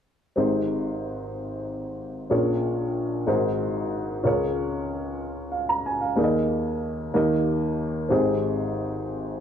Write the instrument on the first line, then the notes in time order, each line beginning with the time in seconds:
upright piano
0.36 G#1 G#2 C4 D#4 G4 G#4 C5
2.30 A#1 A#2 C#4 F4 G#4 A#4 C#5
3.27 G#1 G#2 D#4 F#4 G#4 A#4 C5
4.23 C#2 C#3 C#4 F4 G#4 A#4 C#5
5.52 F5
5.69 A#5
5.86 G#5
6.01 F5
6.16 D#2 D#3 A#3 D#4 G#4 A#4 D5
6.24 D#5
7.14 D#2 D#3 A#3 D#4 G4 A#4 D#5
8.09 G#1 G#2 C4 D#4 G4 G#4 C5